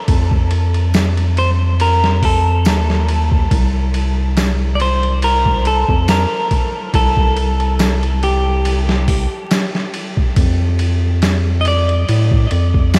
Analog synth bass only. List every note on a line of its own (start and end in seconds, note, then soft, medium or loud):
0.09 2.68 F2 loud
2.66 3.48 D#2 medium
3.52 5.84 C2 loud
5.89 6.26 F2 medium
6.94 9.27 C2 loud
10.37 12.05 F2 loud
12.09 12.47 A2 loud
12.52 12.99 F2 medium